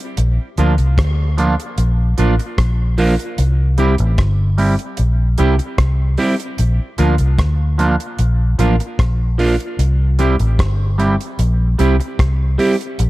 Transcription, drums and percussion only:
0.17 closed hi-hat loud
0.58 closed hi-hat medium
0.78 closed hi-hat soft
0.98 kick loud
0.98 cross-stick loud
0.98 closed hi-hat medium
1.38 closed hi-hat medium
1.60 closed hi-hat medium
1.78 closed hi-hat medium
2.18 closed hi-hat medium
2.39 closed hi-hat soft
2.58 kick medium
2.58 cross-stick loud
2.58 closed hi-hat medium
2.98 open hi-hat medium
3.19 closed hi-hat medium
3.38 closed hi-hat loud
3.78 closed hi-hat medium
3.98 closed hi-hat soft
4.18 kick loud
4.18 cross-stick loud
4.18 closed hi-hat medium
4.58 open hi-hat medium
4.79 closed hi-hat medium
4.97 closed hi-hat medium
5.38 closed hi-hat medium
5.59 closed hi-hat soft
5.78 kick loud
5.78 cross-stick loud
5.78 closed hi-hat medium
6.17 open hi-hat medium
6.40 closed hi-hat medium
6.58 closed hi-hat loud
6.98 closed hi-hat medium
7.18 closed hi-hat medium
7.39 kick loud
7.39 cross-stick loud
7.39 closed hi-hat medium
7.79 closed hi-hat medium
8.00 closed hi-hat medium
8.19 closed hi-hat medium
8.59 closed hi-hat medium
8.80 closed hi-hat soft
8.99 kick loud
8.99 cross-stick loud
8.99 closed hi-hat medium
9.39 open hi-hat medium
9.60 closed hi-hat medium
9.79 closed hi-hat loud
10.19 closed hi-hat medium
10.39 closed hi-hat soft
10.59 kick loud
10.59 cross-stick loud
10.59 closed hi-hat medium
11.00 closed hi-hat medium
11.21 closed hi-hat medium
11.39 closed hi-hat medium
11.79 closed hi-hat medium
12.00 closed hi-hat soft
12.19 kick loud
12.19 cross-stick loud
12.19 closed hi-hat medium
12.59 open hi-hat medium
12.81 closed hi-hat medium
12.99 closed hi-hat medium

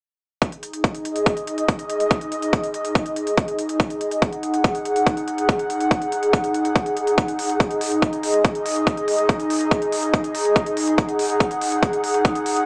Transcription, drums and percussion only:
0.42 kick loud
0.42 closed hi-hat medium
0.52 closed hi-hat medium
0.63 closed hi-hat medium
0.73 closed hi-hat medium
0.84 kick loud
0.84 closed hi-hat medium
0.95 closed hi-hat medium
1.05 closed hi-hat medium
1.16 closed hi-hat medium
1.26 kick loud
1.26 closed hi-hat medium
1.37 closed hi-hat medium
1.47 closed hi-hat medium
1.58 closed hi-hat medium
1.68 kick loud
1.68 closed hi-hat medium
1.79 closed hi-hat medium
1.90 closed hi-hat medium
2.00 closed hi-hat medium
2.11 kick loud
2.11 closed hi-hat medium
2.21 closed hi-hat medium
2.32 closed hi-hat medium
2.42 closed hi-hat medium
2.53 kick loud
2.53 closed hi-hat medium
2.64 closed hi-hat medium
2.74 closed hi-hat medium
2.85 closed hi-hat medium
2.95 kick loud
2.95 closed hi-hat medium
3.06 closed hi-hat medium
3.16 closed hi-hat medium
3.27 closed hi-hat medium
3.37 kick loud
3.37 closed hi-hat medium
3.48 closed hi-hat medium
3.59 closed hi-hat medium
3.69 closed hi-hat medium
3.80 kick loud
3.80 closed hi-hat medium
3.90 closed hi-hat soft
4.01 closed hi-hat medium
4.11 closed hi-hat soft
4.22 kick loud
4.22 closed hi-hat medium
4.33 closed hi-hat soft
4.43 closed hi-hat medium
4.54 closed hi-hat soft
4.64 kick loud
4.64 closed hi-hat medium
4.75 closed hi-hat medium
4.85 closed hi-hat medium
4.96 closed hi-hat medium
5.07 kick loud
5.07 closed hi-hat medium
5.17 closed hi-hat soft
5.28 closed hi-hat medium
5.38 closed hi-hat soft
5.49 kick loud
5.49 closed hi-hat medium
5.59 closed hi-hat soft
5.70 closed hi-hat medium
5.80 closed hi-hat soft
5.91 kick loud
5.91 closed hi-hat medium
6.02 closed hi-hat soft
6.12 closed hi-hat medium
6.23 closed hi-hat soft
6.33 kick loud
6.33 closed hi-hat medium
6.44 closed hi-hat medium
6.54 closed hi-hat medium
6.65 closed hi-hat soft
6.76 kick loud
6.76 closed hi-hat medium
6.86 closed hi-hat soft
6.97 closed hi-hat medium
7.07 closed hi-hat soft
7.18 kick loud
7.18 closed hi-hat medium
7.28 closed hi-hat soft
7.39 open hi-hat loud
7.49 closed hi-hat medium
7.60 kick loud
7.60 closed hi-hat medium
7.71 closed hi-hat soft
7.81 open hi-hat loud
7.92 closed hi-hat medium
8.02 kick loud
8.02 closed hi-hat medium
8.13 closed hi-hat medium
8.23 open hi-hat loud
8.34 closed hi-hat soft
8.45 kick loud
8.45 closed hi-hat medium
8.55 closed hi-hat soft
8.66 open hi-hat loud
8.76 closed hi-hat soft
8.87 kick loud
8.87 closed hi-hat medium
8.97 closed hi-hat soft
9.08 open hi-hat loud
9.19 closed hi-hat medium
9.29 kick loud
9.29 closed hi-hat medium
9.40 closed hi-hat soft
9.50 open hi-hat loud
9.61 closed hi-hat medium
9.71 kick loud
9.71 closed hi-hat medium
9.82 closed hi-hat medium
9.92 open hi-hat loud
10.03 closed hi-hat soft
10.14 kick loud
10.14 closed hi-hat medium
10.24 closed hi-hat medium
10.35 open hi-hat loud
10.45 closed hi-hat medium
10.56 kick loud
10.56 closed hi-hat medium
10.66 closed hi-hat medium
10.77 open hi-hat loud
10.88 closed hi-hat medium
10.98 kick loud
10.98 closed hi-hat medium
11.09 closed hi-hat medium
11.19 open hi-hat loud
11.30 closed hi-hat medium
11.40 kick loud
11.40 closed hi-hat medium
11.51 closed hi-hat medium
11.61 open hi-hat medium
11.72 closed hi-hat medium
11.83 kick loud
11.83 closed hi-hat medium
11.93 closed hi-hat medium
12.04 open hi-hat loud
12.14 closed hi-hat medium
12.25 kick loud
12.25 closed hi-hat medium
12.35 closed hi-hat medium
12.46 open hi-hat loud
12.57 closed hi-hat medium

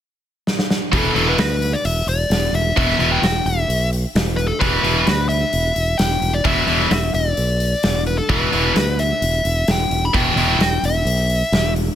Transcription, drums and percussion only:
0.47 snare medium
0.59 snare medium
0.70 snare medium
0.93 kick medium
0.93 open hi-hat medium
1.16 open hi-hat soft
1.38 snare loud
1.38 open hi-hat medium
1.62 open hi-hat soft
1.85 open hi-hat medium
2.08 open hi-hat medium
2.31 snare loud
2.31 open hi-hat medium
2.55 open hi-hat soft
2.77 kick medium
2.77 open hi-hat medium
2.90 snare soft
3.00 open hi-hat soft
3.23 snare medium
3.23 open hi-hat medium
3.46 open hi-hat soft
3.70 open hi-hat medium
3.93 open hi-hat soft
4.16 snare loud
4.16 open hi-hat medium
4.38 open hi-hat soft
4.61 kick medium
4.61 open hi-hat medium
4.85 open hi-hat soft
5.07 snare loud
5.07 open hi-hat medium
5.30 open hi-hat soft
5.53 open hi-hat medium
5.76 open hi-hat medium
5.99 snare medium
5.99 open hi-hat medium
6.22 open hi-hat soft
6.45 kick medium
6.45 open hi-hat medium
6.68 open hi-hat soft
6.80 snare soft
6.91 snare medium
6.91 open hi-hat medium
7.14 open hi-hat soft
7.37 open hi-hat medium
7.60 open hi-hat soft
7.83 snare loud
7.83 open hi-hat medium
8.07 open hi-hat soft
8.29 kick medium
8.29 open hi-hat soft
8.53 open hi-hat soft
8.76 snare medium
8.76 open hi-hat medium
8.99 open hi-hat soft
9.22 open hi-hat medium
9.45 open hi-hat soft
9.68 snare loud
9.68 open hi-hat medium
9.91 open hi-hat soft
10.14 kick medium
10.14 open hi-hat medium
10.37 open hi-hat soft
10.61 snare medium
10.61 open hi-hat medium
10.84 open hi-hat medium
11.07 open hi-hat medium
11.30 open hi-hat soft
11.53 snare loud
11.53 open hi-hat medium
11.76 open hi-hat soft

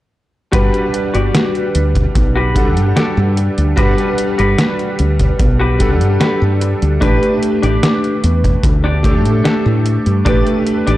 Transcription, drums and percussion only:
0.53 kick loud
0.53 closed hi-hat medium
0.74 closed hi-hat soft
0.94 closed hi-hat medium
1.15 closed hi-hat medium
1.35 snare loud
1.35 closed hi-hat medium
1.55 closed hi-hat soft
1.75 closed hi-hat medium
1.95 kick medium
1.95 closed hi-hat medium
2.15 kick loud
2.15 closed hi-hat medium
2.56 kick loud
2.56 closed hi-hat medium
2.77 closed hi-hat soft
2.97 snare loud
2.97 closed hi-hat medium
3.37 closed hi-hat medium
3.58 closed hi-hat medium
3.77 kick loud
3.77 closed hi-hat medium
3.98 closed hi-hat soft
4.18 closed hi-hat medium
4.39 closed hi-hat medium
4.58 snare loud
4.58 closed hi-hat medium
4.79 closed hi-hat soft
4.99 closed hi-hat medium
5.19 kick medium
5.19 closed hi-hat medium
5.39 kick loud
5.39 closed hi-hat medium
5.80 kick medium
5.80 closed hi-hat medium
6.01 closed hi-hat medium
6.21 snare loud
6.21 closed hi-hat medium
6.61 closed hi-hat medium
6.82 closed hi-hat medium
7.02 kick loud
7.02 closed hi-hat medium
7.23 closed hi-hat soft
7.43 closed hi-hat medium
7.63 closed hi-hat medium
7.83 snare loud
7.83 closed hi-hat medium
8.04 closed hi-hat soft
8.24 closed hi-hat medium
8.44 kick medium
8.44 closed hi-hat medium
8.64 kick loud
8.64 closed hi-hat medium
9.04 kick loud
9.04 closed hi-hat medium
9.25 closed hi-hat soft
9.45 snare loud
9.45 closed hi-hat medium
9.86 closed hi-hat medium
10.06 closed hi-hat medium
10.26 kick loud
10.26 closed hi-hat medium
10.47 closed hi-hat soft
10.67 closed hi-hat medium
10.87 closed hi-hat medium

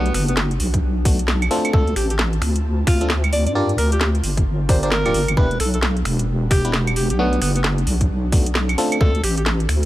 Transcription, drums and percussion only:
0.06 closed hi-hat soft
0.14 finger snap soft
0.14 open hi-hat loud
0.28 closed hi-hat medium
0.37 snare loud
0.51 closed hi-hat soft
0.60 open hi-hat medium
0.74 kick medium
0.74 closed hi-hat medium
1.05 kick loud
1.05 open hi-hat loud
1.19 closed hi-hat medium
1.28 snare loud
1.42 closed hi-hat soft
1.42 claves medium
1.51 open hi-hat loud
1.65 closed hi-hat medium
1.65 claves medium
1.73 kick loud
1.87 closed hi-hat soft
1.96 finger snap soft
1.96 open hi-hat loud
2.10 closed hi-hat medium
2.19 snare loud
2.33 closed hi-hat soft
2.42 finger snap medium
2.42 open hi-hat medium
2.56 closed hi-hat medium
2.87 finger snap medium
2.87 kick loud
2.87 open hi-hat loud
3.01 closed hi-hat medium
3.10 snare loud
3.24 closed hi-hat soft
3.24 claves medium
3.33 open hi-hat medium
3.47 closed hi-hat medium
3.69 closed hi-hat soft
3.78 finger snap soft
3.78 open hi-hat loud
3.92 closed hi-hat medium
4.01 snare loud
4.15 closed hi-hat soft
4.24 open hi-hat medium
4.37 kick medium
4.37 closed hi-hat medium
4.69 kick loud
4.69 open hi-hat loud
4.83 closed hi-hat medium
4.92 snare loud
5.06 closed hi-hat medium
5.06 claves medium
5.14 open hi-hat medium
5.28 closed hi-hat medium
5.28 claves medium
5.37 kick loud
5.51 closed hi-hat soft
5.60 finger snap soft
5.60 open hi-hat loud
5.74 closed hi-hat medium
5.83 snare loud
5.97 closed hi-hat soft
6.05 finger snap medium
6.05 open hi-hat medium
6.19 closed hi-hat medium
6.51 finger snap medium
6.51 kick loud
6.51 open hi-hat loud
6.65 closed hi-hat medium
6.74 snare loud
6.87 closed hi-hat medium
6.87 claves medium
6.96 open hi-hat medium
7.10 closed hi-hat medium
7.33 closed hi-hat soft
7.42 finger snap soft
7.42 open hi-hat loud
7.56 closed hi-hat medium
7.64 snare loud
7.78 closed hi-hat soft
7.87 open hi-hat medium
8.01 kick medium
8.01 closed hi-hat medium
8.32 kick loud
8.32 open hi-hat loud
8.46 closed hi-hat medium
8.55 snare loud
8.69 closed hi-hat medium
8.69 claves medium
8.78 open hi-hat medium
8.92 closed hi-hat medium
8.92 claves medium
9.01 kick loud
9.15 closed hi-hat soft
9.24 finger snap soft
9.24 open hi-hat loud
9.38 closed hi-hat medium
9.46 snare loud
9.60 closed hi-hat soft
9.69 finger snap medium
9.69 open hi-hat medium

